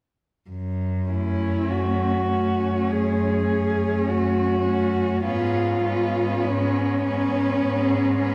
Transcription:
0.50 1.57 F#2 soft
1.08 2.29 A3 soft
1.08 2.28 C#4 soft
1.08 1.72 E4 soft
1.71 2.76 F#2 soft
1.71 2.93 F#4 soft
2.31 3.46 A3 soft
2.31 3.46 C#4 soft
2.91 3.94 F#2 soft
2.91 4.10 G#4 soft
3.49 4.64 A3 soft
3.49 4.64 C#4 soft
4.08 5.12 F#2 soft
4.08 5.26 F#4 medium
4.66 5.24 A3 soft
4.66 5.24 C#4 soft
5.25 6.31 G#2 soft
5.25 5.84 B3 soft
5.25 5.84 C#4 soft
5.25 6.47 F4 soft
5.84 7.01 B3 soft
5.84 7.01 C#4 soft
6.45 7.48 G#2 soft
6.45 8.35 C#4 medium
7.02 8.17 B3 soft
7.02 8.16 C#4 soft
7.62 8.35 G#2 soft
8.19 8.35 B3 soft
8.19 8.35 C#4 soft

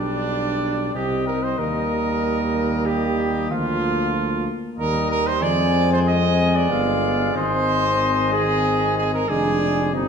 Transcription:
0.00 0.92 B1 medium
0.00 1.56 G3 medium
0.00 0.93 D4 medium
0.00 0.96 D4 medium
0.00 0.97 D5 medium
0.94 1.58 C2 medium
0.94 1.60 C4 medium
0.94 1.26 G4 medium
0.94 3.53 D#5 medium
1.27 1.45 A#4 medium
1.44 1.60 C5 medium
1.59 3.47 D#2 medium
1.59 3.48 G3 medium
1.59 5.14 A#3 medium
1.59 2.87 A#4 medium
2.86 3.51 G4 medium
3.51 4.49 D2 medium
3.51 4.49 F3 medium
3.51 4.49 F4 medium
3.51 4.51 F5 medium
4.78 5.43 D#2 medium
4.78 5.43 G3 medium
4.78 5.08 A#4 medium
4.78 5.43 D#5 medium
5.11 5.29 A#4 medium
5.27 5.44 C5 medium
5.41 6.70 F2 medium
5.41 9.28 G#3 medium
5.41 6.72 C4 medium
5.41 5.90 D5 loud
5.41 6.72 G#5 medium
5.93 6.00 C5 medium
6.08 6.57 D#5 loud
6.56 7.36 D5 medium
6.70 7.34 G1 medium
6.70 7.35 B3 medium
6.70 7.36 F5 medium
7.34 9.25 G#1 medium
7.34 9.26 C4 medium
7.34 8.31 C5 loud
7.34 9.29 D#5 medium
8.33 8.96 G#4 loud
8.97 9.13 G#4 loud
9.14 9.31 A#4 medium
9.29 9.95 F1 medium
9.29 9.90 G#3 medium
9.29 9.95 D4 medium
9.29 9.94 G#4 medium
9.29 9.95 D5 medium
9.93 10.08 G1 medium
9.93 10.08 G3 medium
9.93 10.08 C4 medium
9.93 10.08 D#4 medium
9.93 10.08 D#5 medium

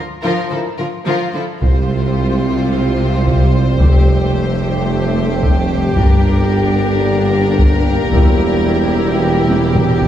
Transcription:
0.23 0.32 D3 medium
0.23 0.49 F3 soft
0.23 0.50 F4 soft
0.23 0.49 A#4 soft
0.50 0.59 D3 soft
0.50 0.70 F3 soft
0.50 0.60 F3 soft
0.50 0.59 E4 soft
0.50 0.58 A4 soft
0.50 0.70 A#4 soft
0.78 0.87 D3 soft
0.78 0.87 F3 soft
0.78 0.87 F4 soft
0.78 0.86 A#4 soft
1.06 1.15 D3 soft
1.06 1.32 F3 soft
1.06 1.33 F4 soft
1.06 1.32 A#4 soft
1.34 1.42 D3 soft
1.34 1.42 F3 soft
1.34 1.43 E4 soft
1.34 1.42 A4 soft
1.61 3.76 C2 soft
1.61 5.93 C3 medium
1.61 3.76 C3 soft
1.61 3.76 G3 soft
1.61 5.93 G3 medium
1.61 3.76 C4 medium
1.61 3.76 F4 soft
1.61 5.93 C5 soft
1.61 taiko medium
3.26 taiko medium
3.79 5.93 F1 soft
3.79 5.93 F2 soft
3.79 5.93 A3 medium
3.79 5.93 A3 soft
3.79 8.08 G4 medium
3.79 8.09 G4 soft
3.79 taiko medium
5.43 taiko medium
5.96 8.08 G1 medium
5.96 7.95 G1 medium
5.96 8.08 G2 soft
5.96 7.94 D3 medium
5.96 10.08 G3 medium
5.96 10.08 A#3 medium
5.96 8.09 D4 soft
5.96 10.08 A#4 medium
5.96 taiko medium
7.59 taiko medium
8.11 10.08 E1 medium
8.11 10.08 E2 medium
8.11 10.08 E3 medium
8.11 10.08 E4 soft
8.11 10.08 G4 medium
8.11 taiko medium
9.48 taiko high medium
9.75 taiko low-mid medium
10.02 taiko low medium

